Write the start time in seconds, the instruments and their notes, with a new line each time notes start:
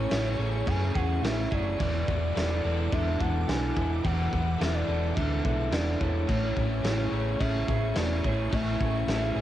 Already playing: clean electric guitar A3 G#4, overdriven electric guitar A3 C#4 E4 G#4, soft synth lead C#5, ambient pad G#5 C#6
0.10 fingered electric bass A1, clean electric guitar E3, overdriven electric guitar E4 G#4, snare, crash
0.37 fingered electric bass A1, clean electric guitar A3, overdriven electric guitar G#4 C#5
0.66 fingered electric bass F#2, clean electric guitar C#4, overdriven electric guitar C#4 G#4, soft synth lead G#5, kick, crash
0.95 fingered electric bass E2, overdriven electric guitar C#4 G#4, clean electric guitar G#4, soft synth lead F#5, kick
1.22 fingered electric bass A1, clean electric guitar A3, overdriven electric guitar C#4 E4, soft synth lead E5, snare, crash
1.51 fingered electric bass F#1, overdriven electric guitar E4 G#4, clean electric guitar G#4, soft synth lead D5, kick
1.78 fingered electric bass E1, overdriven electric guitar E3 G#3 B3 E4 D5, clean electric guitar F#3, ambient pad F#5 D6, kick, crash
2.07 fingered electric bass E1, clean electric guitar B3, overdriven electric guitar B3, kick
2.35 fingered electric bass E1, clean electric guitar F#3, overdriven electric guitar E4 A4, snare, crash
2.64 fingered electric bass E1, clean electric guitar B3, overdriven electric guitar A4 D5
2.92 fingered electric bass E1, clean electric guitar D4, overdriven electric guitar D4 A4, soft synth lead E5, kick, crash
3.19 fingered electric bass E1, overdriven electric guitar B3 A4, soft synth lead F#5, kick
3.47 fingered electric bass B1, clean electric guitar B3, overdriven electric guitar D4 E4, soft synth lead G#5, snare, crash
3.75 fingered electric bass E1, overdriven electric guitar E4 A4, kick
4.03 fingered electric bass E1, overdriven electric guitar E3 G#3 B3 E4 D5, clean electric guitar F#3, soft synth lead F#5, kick, crash
4.31 fingered electric bass E1, overdriven electric guitar B3, clean electric guitar B3, kick
4.58 fingered electric bass E1, clean electric guitar F#3, overdriven electric guitar E4 A4, soft synth lead E5, crash
4.62 snare
4.74 soft synth lead D5
4.86 fingered electric bass E1, clean electric guitar B3, overdriven electric guitar A4 D5
5.15 fingered electric bass D2, clean electric guitar D4, overdriven electric guitar D4 A4, soft synth lead E5, kick, crash
5.44 fingered electric bass B1, overdriven electric guitar B3 A4, soft synth lead E5, kick
5.71 fingered electric bass E1, clean electric guitar B3, overdriven electric guitar D4 E4, soft synth lead D5, snare, crash
5.99 fingered electric bass E1, overdriven electric guitar E4 A4, clean electric guitar A4, soft synth lead C#5, kick
6.27 fingered electric bass A1, clean electric guitar E3, overdriven electric guitar A3 C#4 E4 C#5, ambient pad G#5 C#6, kick, crash
6.55 fingered electric bass A1, clean electric guitar A3, overdriven electric guitar C#4, kick
6.83 fingered electric bass A1, clean electric guitar E3, overdriven electric guitar E4 G#4, snare, crash
7.12 fingered electric bass A1, clean electric guitar A3, overdriven electric guitar G#4 C#5
7.39 fingered electric bass A1, clean electric guitar C#4, overdriven electric guitar C#4 G#4, soft synth lead E5, kick, crash
7.68 fingered electric bass A1, overdriven electric guitar C#4 G#4, clean electric guitar G#4, soft synth lead E5, kick
7.95 fingered electric bass E1, clean electric guitar A3, overdriven electric guitar C#4 E4, soft synth lead D5, snare, crash
8.24 fingered electric bass A1, overdriven electric guitar E4 G#4, clean electric guitar G#4, soft synth lead C#5, kick
8.51 fingered electric bass A1, clean electric guitar E3, overdriven electric guitar A3 C#4 E4 C#5, soft synth lead E5, kick, crash
8.80 fingered electric bass A1, clean electric guitar A3, overdriven electric guitar C#4, kick
9.07 fingered electric bass A1, clean electric guitar E3, overdriven electric guitar E4 G#4, snare, crash
9.36 fingered electric bass A1, clean electric guitar A3, overdriven electric guitar G#4 C#5